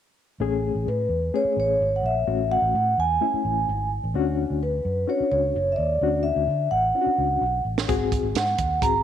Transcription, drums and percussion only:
7.78 snare
7.89 kick, closed hi-hat
8.12 kick, closed hi-hat
8.35 snare, closed hi-hat
8.58 kick, closed hi-hat
8.82 kick, closed hi-hat

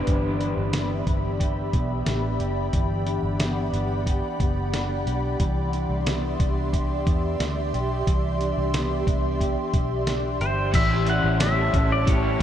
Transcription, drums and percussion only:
0.07 kick, closed hi-hat
0.41 closed hi-hat
0.73 snare, closed hi-hat
1.07 kick, closed hi-hat
1.40 kick, closed hi-hat
1.73 kick, closed hi-hat
2.06 snare, closed hi-hat
2.40 closed hi-hat
2.73 kick, closed hi-hat
3.07 closed hi-hat
3.40 snare, closed hi-hat
3.74 closed hi-hat
4.07 kick, closed hi-hat
4.40 kick, closed hi-hat
4.74 snare, closed hi-hat
5.07 closed hi-hat
5.40 kick, closed hi-hat
5.73 closed hi-hat
6.07 snare, closed hi-hat
6.40 kick, closed hi-hat
6.73 kick, closed hi-hat
7.07 kick, closed hi-hat
7.40 snare, closed hi-hat
7.74 closed hi-hat
8.07 kick, closed hi-hat
8.41 closed hi-hat
8.74 snare, closed hi-hat
9.07 kick, closed hi-hat
9.40 kick, closed hi-hat
9.74 kick, closed hi-hat
10.07 snare, closed hi-hat
10.41 closed hi-hat
10.74 kick, closed hi-hat, crash
11.07 closed hi-hat
11.40 snare, closed hi-hat, tambourine
11.74 kick, closed hi-hat
12.07 kick, closed hi-hat

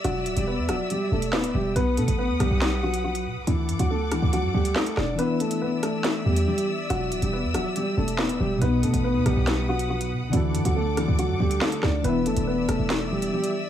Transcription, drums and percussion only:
0.04 closed hi-hat
0.26 closed hi-hat
0.37 closed hi-hat
0.69 cross-stick, closed hi-hat
0.90 closed hi-hat
1.22 closed hi-hat
1.33 snare, clap
1.44 closed hi-hat
1.76 closed hi-hat
1.97 closed hi-hat
2.08 closed hi-hat
2.40 cross-stick, closed hi-hat
2.62 snare, clap, closed hi-hat
2.94 closed hi-hat
3.15 closed hi-hat
3.47 closed hi-hat
3.69 closed hi-hat
3.79 closed hi-hat
4.12 cross-stick, closed hi-hat
4.33 closed hi-hat
4.65 closed hi-hat
4.76 snare, clap
4.86 closed hi-hat
4.97 cross-stick, snare
5.19 closed hi-hat
5.40 closed hi-hat
5.51 closed hi-hat
5.83 cross-stick, closed hi-hat
6.04 snare, clap, closed hi-hat
6.36 closed hi-hat
6.58 closed hi-hat
6.90 closed hi-hat
7.12 closed hi-hat
7.22 closed hi-hat
7.54 cross-stick, closed hi-hat
7.76 closed hi-hat
8.08 closed hi-hat
8.19 snare, clap
8.29 closed hi-hat
8.62 closed hi-hat
8.83 closed hi-hat
8.94 closed hi-hat
9.26 cross-stick, closed hi-hat
9.47 snare, clap, closed hi-hat
9.79 closed hi-hat
10.01 closed hi-hat
10.33 closed hi-hat
10.55 closed hi-hat
10.65 closed hi-hat
10.97 cross-stick, closed hi-hat
11.19 closed hi-hat
11.51 closed hi-hat
11.61 snare, clap
11.72 closed hi-hat
11.83 cross-stick, snare
12.04 closed hi-hat
12.26 closed hi-hat
12.37 closed hi-hat
12.69 cross-stick, closed hi-hat
12.90 snare, clap, closed hi-hat
13.22 closed hi-hat
13.44 closed hi-hat

